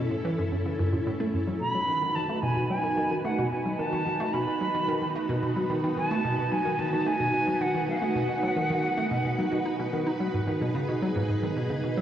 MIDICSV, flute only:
0, 0, Header, 1, 2, 480
1, 0, Start_track
1, 0, Tempo, 545455
1, 1418, Time_signature, 4, 2, 24, 8
1, 10573, End_track
2, 0, Start_track
2, 0, Title_t, "Flute"
2, 0, Program_c, 0, 73
2, 1416, Note_on_c, 0, 83, 108
2, 1894, Note_on_c, 0, 81, 93
2, 1907, Note_off_c, 0, 83, 0
2, 2132, Note_on_c, 0, 80, 89
2, 2145, Note_off_c, 0, 81, 0
2, 2363, Note_off_c, 0, 80, 0
2, 2368, Note_on_c, 0, 80, 97
2, 2819, Note_off_c, 0, 80, 0
2, 2850, Note_on_c, 0, 78, 84
2, 3077, Note_off_c, 0, 78, 0
2, 3089, Note_on_c, 0, 80, 85
2, 3328, Note_on_c, 0, 81, 93
2, 3342, Note_off_c, 0, 80, 0
2, 3812, Note_on_c, 0, 83, 90
2, 3825, Note_off_c, 0, 81, 0
2, 4775, Note_off_c, 0, 83, 0
2, 5259, Note_on_c, 0, 81, 101
2, 5740, Note_on_c, 0, 80, 96
2, 5754, Note_off_c, 0, 81, 0
2, 5984, Note_on_c, 0, 81, 97
2, 5997, Note_off_c, 0, 80, 0
2, 6222, Note_on_c, 0, 80, 103
2, 6235, Note_off_c, 0, 81, 0
2, 6702, Note_on_c, 0, 78, 92
2, 6715, Note_off_c, 0, 80, 0
2, 6940, Note_off_c, 0, 78, 0
2, 6944, Note_on_c, 0, 78, 91
2, 8825, Note_off_c, 0, 78, 0
2, 10573, End_track
0, 0, End_of_file